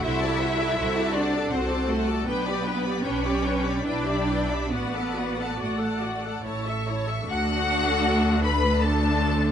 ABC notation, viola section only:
X:1
M:3/4
L:1/16
Q:1/4=78
K:D
V:1 name="Viola section"
[FA] [FA] [FA] [FA] [FA] [FA] [FA] [FA] [FA] [FA] [FA] [FA] | [DB] [Gd] [DB] [Gd] [DB] [Gd] [DB] [Gd] [EB] [Gd] [EB] [Gd] | [Fd] [Af] [Fd] [Af] [Fd] [Af] [Fd] [Af] [Ec] [Ae] [Ec] [Ae] | [A,D]8 [A,D]4 |]